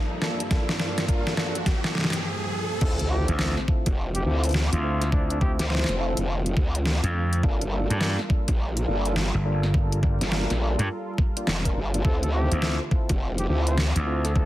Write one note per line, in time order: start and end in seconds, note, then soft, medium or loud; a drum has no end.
0.00 2.77 G2 medium
0.00 2.78 F3 medium
0.00 2.77 A#3 medium
0.00 2.24 G4 medium
0.00 2.78 A4 medium
0.00 2.24 C5 medium
0.00 2.24 F5 medium
0.00 riser medium
0.22 0.42 A#3 medium
0.22 0.42 D4 medium
0.22 0.42 F4 medium
0.22 0.42 A4 loud
0.22 snare medium
0.40 closed hi-hat medium
0.51 0.76 A#3 loud
0.51 0.76 D4 medium
0.51 0.76 F4 medium
0.51 0.76 A4 loud
0.51 kick loud
0.51 snare medium
0.51 closed hi-hat medium
0.69 snare medium
0.79 1.05 A#3 medium
0.79 1.05 D4 medium
0.79 1.05 F4 medium
0.79 1.05 G4 medium
0.79 snare medium
0.98 snare medium
0.98 closed hi-hat medium
1.08 1.34 A#3 medium
1.08 1.34 D4 medium
1.08 1.34 F4 medium
1.08 1.34 A#4 loud
1.08 kick loud
1.08 closed hi-hat medium
1.27 snare medium
1.37 1.57 A#3 medium
1.37 1.58 D4 medium
1.37 1.58 F4 medium
1.37 1.58 A4 medium
1.37 snare loud
1.55 closed hi-hat medium
1.66 kick loud
1.66 snare loud
1.66 closed hi-hat medium
1.84 snare medium
1.95 snare soft
1.98 snare medium
2.01 snare medium
2.04 snare medium
2.10 snare medium
2.13 snare loud
2.13 closed hi-hat medium
2.81 3.26 D2 loud
2.81 7.39 D3 medium
2.81 7.39 A3 medium
2.81 3.02 C4 medium
2.81 7.39 C4 medium
2.81 3.02 E4 medium
2.81 3.02 F4 medium
2.81 14.45 F4 medium
2.81 3.02 A4 loud
2.81 2.93 A4 medium
2.81 kick loud
2.81 crash loud
2.81 impact medium
2.99 3.07 A4 medium
2.99 closed hi-hat soft
3.10 3.36 C4 medium
3.10 3.36 E4 medium
3.10 3.36 F4 medium
3.10 3.28 G4 medium
3.10 3.36 A4 loud
3.28 3.55 D2 loud
3.28 closed hi-hat medium
3.39 3.60 C4 medium
3.39 3.60 E4 medium
3.39 3.60 F4 medium
3.39 3.60 A4 medium
3.39 snare loud
3.57 snare medium
3.68 3.88 C4 medium
3.68 3.88 E4 medium
3.68 3.88 F4 medium
3.68 3.88 A4 medium
3.68 kick loud
3.86 4.24 F1 loud
3.86 kick loud
3.86 closed hi-hat medium
4.15 4.22 G4 medium
4.15 closed hi-hat medium
4.25 4.70 D2 loud
4.25 4.54 C4 loud
4.25 4.54 E4 medium
4.25 4.54 F4 medium
4.25 4.37 G4 medium
4.25 4.54 A4 loud
4.44 closed hi-hat medium
4.44 closed hi-hat soft
4.45 closed hi-hat medium
4.49 closed hi-hat soft
4.51 snare loud
4.51 closed hi-hat soft
4.73 5.57 D2 loud
4.73 5.10 F4 medium
4.73 closed hi-hat medium
4.84 5.04 C4 medium
4.84 5.04 E4 medium
4.84 5.04 F4 medium
4.84 5.04 A4 loud
5.02 snare soft
5.02 closed hi-hat medium
5.12 5.38 C4 loud
5.12 5.24 D4 medium
5.12 5.38 E4 medium
5.12 5.38 F4 medium
5.12 5.38 A4 loud
5.12 kick loud
5.30 5.37 D4 medium
5.30 closed hi-hat soft
5.41 5.67 C4 medium
5.41 5.67 E4 medium
5.41 5.67 F4 medium
5.41 5.53 G4 medium
5.41 5.67 G4 medium
5.41 kick loud
5.59 5.85 D2 loud
5.59 5.66 G4 medium
5.59 snare soft
5.59 closed hi-hat medium
5.70 5.96 C4 medium
5.70 5.96 E4 medium
5.70 5.96 F4 medium
5.70 5.96 C5 loud
5.70 snare medium
5.75 snare medium
5.79 snare medium
5.84 snare loud
5.88 6.14 F1 loud
5.88 snare medium
5.88 closed hi-hat soft
5.99 6.19 C4 medium
5.99 6.19 E4 medium
5.99 6.19 F4 medium
5.99 6.19 A4 medium
6.17 6.55 F1 loud
6.17 closed hi-hat medium
6.46 closed hi-hat medium
6.57 7.01 D2 loud
6.57 kick loud
6.75 closed hi-hat medium
6.86 snare loud
7.03 7.41 F2 loud
7.03 closed hi-hat medium
7.33 closed hi-hat medium
7.43 7.88 G1 loud
7.43 12.01 G3 medium
7.43 7.64 A#3 medium
7.43 7.64 D4 medium
7.43 7.64 F4 medium
7.43 7.64 A4 loud
7.43 12.01 A4 medium
7.43 12.01 A#4 medium
7.43 kick loud
7.61 closed hi-hat soft
7.72 7.98 A#3 medium
7.72 7.98 D4 medium
7.72 7.98 F4 medium
7.72 7.98 A4 loud
7.90 8.16 G2 loud
7.90 closed hi-hat medium
8.01 8.21 A#3 medium
8.01 8.21 D4 medium
8.01 8.21 F4 medium
8.01 8.21 A4 medium
8.01 snare loud
8.19 snare medium
8.30 8.50 A#3 medium
8.30 8.50 D4 medium
8.30 8.50 F4 medium
8.30 8.50 A4 medium
8.30 kick loud
8.48 8.86 A#1 loud
8.48 kick loud
8.48 closed hi-hat medium
8.77 closed hi-hat medium
8.88 9.32 G1 medium
8.88 9.15 A#3 loud
8.88 9.15 D4 medium
8.88 9.15 F4 loud
8.88 9.15 A4 loud
9.05 closed hi-hat medium
9.16 snare loud
9.34 10.18 G1 loud
9.45 9.66 A#3 medium
9.45 9.66 D4 medium
9.45 9.66 F4 medium
9.45 9.66 A4 medium
9.63 snare soft
9.74 10.00 A#3 medium
9.74 10.00 D4 medium
9.74 10.00 F4 medium
9.74 10.00 A4 loud
9.74 kick loud
9.92 closed hi-hat soft
10.03 10.29 A#3 medium
10.03 10.29 D4 medium
10.03 10.29 F4 medium
10.03 10.29 G4 medium
10.03 kick loud
10.21 10.47 G1 medium
10.21 snare soft
10.21 closed hi-hat medium
10.32 10.57 A#3 medium
10.32 10.58 D4 medium
10.32 10.57 F4 medium
10.32 10.58 A#4 loud
10.32 snare loud
10.50 10.76 A#1 loud
10.50 snare medium
10.50 closed hi-hat soft
10.61 10.81 A#3 medium
10.61 10.81 D4 medium
10.61 10.81 F4 medium
10.61 10.81 A4 medium
10.79 10.88 G2 loud
10.79 closed hi-hat medium
11.18 kick loud
11.37 11.51 A#3 medium
11.37 11.51 D4 medium
11.37 11.51 F4 medium
11.37 11.51 G4 medium
11.37 closed hi-hat medium
11.47 11.74 F1 loud
11.47 snare loud
11.65 11.79 A#3 medium
11.65 11.80 D4 medium
11.65 11.80 F4 medium
11.65 11.79 A#4 loud
11.65 kick medium
11.65 closed hi-hat medium
11.76 12.03 G1 loud
11.94 12.03 A#3 medium
11.94 12.03 D4 medium
11.94 12.03 F4 medium
11.94 12.03 A4 medium
11.94 closed hi-hat medium
12.05 12.49 D2 loud
12.05 14.45 D3 medium
12.05 14.45 A3 medium
12.05 12.25 C4 medium
12.05 14.45 C4 medium
12.05 12.25 E4 medium
12.05 12.25 F4 medium
12.05 12.25 A4 loud
12.05 12.17 A4 medium
12.05 kick loud
12.23 12.30 A4 medium
12.23 closed hi-hat soft
12.33 12.59 C4 medium
12.33 12.59 E4 medium
12.33 12.59 F4 medium
12.33 12.51 G4 medium
12.33 12.59 A4 medium
12.52 12.78 D2 loud
12.52 closed hi-hat medium
12.62 12.83 C4 medium
12.62 12.83 E4 medium
12.62 12.83 F4 medium
12.62 12.83 A4 medium
12.62 snare loud
12.91 13.12 C4 medium
12.91 13.12 E4 medium
12.91 13.11 F4 medium
12.91 13.12 A4 medium
12.91 kick loud
13.09 13.47 F1 loud
13.09 kick loud
13.09 closed hi-hat medium
13.38 13.45 G4 medium
13.38 closed hi-hat medium
13.49 13.93 D2 loud
13.49 13.77 C4 loud
13.49 13.77 E4 loud
13.49 13.77 F4 medium
13.49 13.61 G4 medium
13.49 13.77 A4 loud
13.67 13.77 C5 medium
13.67 closed hi-hat medium
13.78 snare loud
13.96 14.45 D2 loud
13.96 closed hi-hat medium
14.07 14.27 C4 medium
14.07 14.27 E4 medium
14.07 14.27 F4 medium
14.07 14.27 A4 loud
14.25 14.32 A4 medium
14.25 snare soft
14.25 closed hi-hat medium
14.35 14.45 C4 loud
14.35 14.45 E4 medium
14.35 14.45 F4 medium
14.35 14.45 A4 medium
14.35 14.45 A4 loud
14.35 kick loud